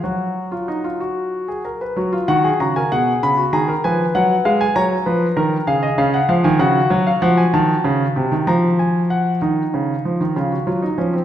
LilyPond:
<<
  \new Staff \with { instrumentName = "Grand piano" } { \time 6/8 \key fis \major \tempo 4. = 64 << { fis''2~ fis''8 r8 | r8 fis''8 ais''16 gis''16 fis''8 b''8 ais''8 | aes''8 fis''8 f''16 aes''16 ais''4. | eis''16 dis''16 eis''16 fis''16 eis''16 gis''16 fis''8. eis''16 fis''16 gis''16 |
a''4. ais''8 gis''8 fis''8 | r2. | } \\ { fis'8. eis'16 dis'16 eis'16 fis'8. gis'16 ais'16 b'16 | fis'16 eis'16 fis'16 gis'16 fis'16 ais'16 gis'8. fis'16 gis'16 ais'16 | ces''4. cis''8 b'8 ais'8 | gis'4. fis'4.~ |
fis'2. | dis'4. eis'16 fis'16 eis'16 dis'16 cis'16 bis16 | } >> }
  \new Staff \with { instrumentName = "Grand piano" } { \clef bass \time 6/8 \key fis \major fis2~ fis8 r8 | fis8 dis8 cis8 b,8 cis8 dis8 | f8 fis8 aes8 fis8 eis8 dis8 | cis8 cis8 eis16 dis16 cis8 fis8 eis8 |
ees8 cis8 c16 ees16 eis4. | dis8 cis8 eis16 dis16 cis8 fis8 eis8 | }
>>